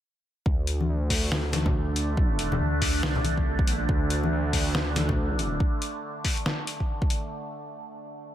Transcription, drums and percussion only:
0, 0, Header, 1, 2, 480
1, 0, Start_track
1, 0, Tempo, 428571
1, 515, Time_signature, 4, 2, 24, 8
1, 9349, End_track
2, 0, Start_track
2, 0, Title_t, "Drums"
2, 514, Note_on_c, 9, 36, 122
2, 626, Note_off_c, 9, 36, 0
2, 754, Note_on_c, 9, 42, 81
2, 866, Note_off_c, 9, 42, 0
2, 900, Note_on_c, 9, 63, 64
2, 1012, Note_off_c, 9, 63, 0
2, 1234, Note_on_c, 9, 36, 60
2, 1235, Note_on_c, 9, 46, 96
2, 1346, Note_off_c, 9, 36, 0
2, 1347, Note_off_c, 9, 46, 0
2, 1475, Note_on_c, 9, 38, 124
2, 1587, Note_off_c, 9, 38, 0
2, 1709, Note_on_c, 9, 63, 62
2, 1715, Note_on_c, 9, 38, 64
2, 1715, Note_on_c, 9, 42, 85
2, 1821, Note_off_c, 9, 63, 0
2, 1827, Note_off_c, 9, 38, 0
2, 1827, Note_off_c, 9, 42, 0
2, 1857, Note_on_c, 9, 64, 97
2, 1859, Note_on_c, 9, 36, 103
2, 1969, Note_off_c, 9, 64, 0
2, 1971, Note_off_c, 9, 36, 0
2, 2196, Note_on_c, 9, 42, 86
2, 2308, Note_off_c, 9, 42, 0
2, 2434, Note_on_c, 9, 36, 127
2, 2546, Note_off_c, 9, 36, 0
2, 2675, Note_on_c, 9, 42, 81
2, 2787, Note_off_c, 9, 42, 0
2, 2822, Note_on_c, 9, 64, 97
2, 2824, Note_on_c, 9, 63, 72
2, 2934, Note_off_c, 9, 64, 0
2, 2936, Note_off_c, 9, 63, 0
2, 3154, Note_on_c, 9, 36, 62
2, 3155, Note_on_c, 9, 46, 99
2, 3266, Note_off_c, 9, 36, 0
2, 3267, Note_off_c, 9, 46, 0
2, 3395, Note_on_c, 9, 38, 127
2, 3507, Note_off_c, 9, 38, 0
2, 3535, Note_on_c, 9, 64, 85
2, 3632, Note_on_c, 9, 63, 64
2, 3635, Note_on_c, 9, 42, 84
2, 3647, Note_off_c, 9, 64, 0
2, 3744, Note_off_c, 9, 63, 0
2, 3747, Note_off_c, 9, 42, 0
2, 3779, Note_on_c, 9, 36, 64
2, 3891, Note_off_c, 9, 36, 0
2, 4019, Note_on_c, 9, 36, 115
2, 4115, Note_on_c, 9, 42, 85
2, 4131, Note_off_c, 9, 36, 0
2, 4227, Note_off_c, 9, 42, 0
2, 4355, Note_on_c, 9, 36, 127
2, 4467, Note_off_c, 9, 36, 0
2, 4596, Note_on_c, 9, 42, 82
2, 4708, Note_off_c, 9, 42, 0
2, 4744, Note_on_c, 9, 63, 75
2, 4856, Note_off_c, 9, 63, 0
2, 5075, Note_on_c, 9, 36, 63
2, 5077, Note_on_c, 9, 46, 88
2, 5187, Note_off_c, 9, 36, 0
2, 5189, Note_off_c, 9, 46, 0
2, 5317, Note_on_c, 9, 38, 127
2, 5429, Note_off_c, 9, 38, 0
2, 5551, Note_on_c, 9, 63, 64
2, 5556, Note_on_c, 9, 38, 67
2, 5556, Note_on_c, 9, 42, 85
2, 5663, Note_off_c, 9, 63, 0
2, 5668, Note_off_c, 9, 38, 0
2, 5668, Note_off_c, 9, 42, 0
2, 5700, Note_on_c, 9, 36, 111
2, 5700, Note_on_c, 9, 64, 94
2, 5812, Note_off_c, 9, 36, 0
2, 5812, Note_off_c, 9, 64, 0
2, 6037, Note_on_c, 9, 42, 76
2, 6149, Note_off_c, 9, 42, 0
2, 6275, Note_on_c, 9, 36, 127
2, 6387, Note_off_c, 9, 36, 0
2, 6516, Note_on_c, 9, 42, 77
2, 6628, Note_off_c, 9, 42, 0
2, 6995, Note_on_c, 9, 36, 65
2, 6995, Note_on_c, 9, 46, 87
2, 7107, Note_off_c, 9, 36, 0
2, 7107, Note_off_c, 9, 46, 0
2, 7139, Note_on_c, 9, 42, 36
2, 7234, Note_on_c, 9, 38, 127
2, 7251, Note_off_c, 9, 42, 0
2, 7346, Note_off_c, 9, 38, 0
2, 7474, Note_on_c, 9, 42, 80
2, 7586, Note_off_c, 9, 42, 0
2, 7620, Note_on_c, 9, 36, 63
2, 7732, Note_off_c, 9, 36, 0
2, 7859, Note_on_c, 9, 36, 112
2, 7954, Note_on_c, 9, 42, 78
2, 7971, Note_off_c, 9, 36, 0
2, 8066, Note_off_c, 9, 42, 0
2, 9349, End_track
0, 0, End_of_file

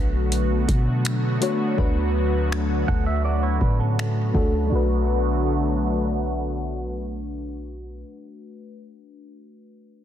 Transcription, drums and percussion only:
0, 0, Header, 1, 2, 480
1, 0, Start_track
1, 0, Key_signature, 2, "minor"
1, 0, Tempo, 731707
1, 1170, Time_signature, 4, 2, 24, 8
1, 6590, End_track
2, 0, Start_track
2, 0, Title_t, "Drums"
2, 209, Note_on_c, 9, 42, 68
2, 275, Note_off_c, 9, 42, 0
2, 449, Note_on_c, 9, 36, 86
2, 450, Note_on_c, 9, 42, 60
2, 514, Note_off_c, 9, 36, 0
2, 516, Note_off_c, 9, 42, 0
2, 689, Note_on_c, 9, 42, 67
2, 698, Note_on_c, 9, 26, 95
2, 755, Note_off_c, 9, 42, 0
2, 763, Note_off_c, 9, 26, 0
2, 930, Note_on_c, 9, 42, 64
2, 995, Note_off_c, 9, 42, 0
2, 1170, Note_on_c, 9, 36, 108
2, 1235, Note_off_c, 9, 36, 0
2, 1656, Note_on_c, 9, 26, 103
2, 1721, Note_off_c, 9, 26, 0
2, 1891, Note_on_c, 9, 36, 81
2, 1956, Note_off_c, 9, 36, 0
2, 2369, Note_on_c, 9, 36, 81
2, 2434, Note_off_c, 9, 36, 0
2, 2619, Note_on_c, 9, 26, 91
2, 2685, Note_off_c, 9, 26, 0
2, 2852, Note_on_c, 9, 36, 95
2, 2917, Note_off_c, 9, 36, 0
2, 6590, End_track
0, 0, End_of_file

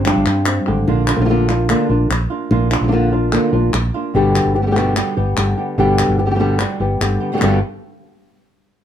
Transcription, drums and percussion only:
0, 0, Header, 1, 2, 480
1, 0, Start_track
1, 0, Tempo, 408719
1, 1028, Time_signature, 4, 2, 24, 8
1, 10385, End_track
2, 0, Start_track
2, 0, Title_t, "Drums"
2, 63, Note_on_c, 9, 39, 89
2, 180, Note_off_c, 9, 39, 0
2, 301, Note_on_c, 9, 39, 76
2, 418, Note_off_c, 9, 39, 0
2, 539, Note_on_c, 9, 39, 97
2, 656, Note_off_c, 9, 39, 0
2, 1262, Note_on_c, 9, 39, 92
2, 1380, Note_off_c, 9, 39, 0
2, 1751, Note_on_c, 9, 39, 66
2, 1869, Note_off_c, 9, 39, 0
2, 1990, Note_on_c, 9, 39, 84
2, 2107, Note_off_c, 9, 39, 0
2, 2477, Note_on_c, 9, 39, 85
2, 2595, Note_off_c, 9, 39, 0
2, 3187, Note_on_c, 9, 39, 86
2, 3304, Note_off_c, 9, 39, 0
2, 3906, Note_on_c, 9, 39, 72
2, 4023, Note_off_c, 9, 39, 0
2, 4387, Note_on_c, 9, 39, 81
2, 4504, Note_off_c, 9, 39, 0
2, 5112, Note_on_c, 9, 39, 76
2, 5229, Note_off_c, 9, 39, 0
2, 5597, Note_on_c, 9, 39, 65
2, 5714, Note_off_c, 9, 39, 0
2, 5825, Note_on_c, 9, 39, 82
2, 5942, Note_off_c, 9, 39, 0
2, 6307, Note_on_c, 9, 39, 84
2, 6425, Note_off_c, 9, 39, 0
2, 7026, Note_on_c, 9, 39, 84
2, 7144, Note_off_c, 9, 39, 0
2, 7743, Note_on_c, 9, 39, 78
2, 7860, Note_off_c, 9, 39, 0
2, 8234, Note_on_c, 9, 39, 83
2, 8351, Note_off_c, 9, 39, 0
2, 8708, Note_on_c, 9, 39, 92
2, 8825, Note_off_c, 9, 39, 0
2, 10385, End_track
0, 0, End_of_file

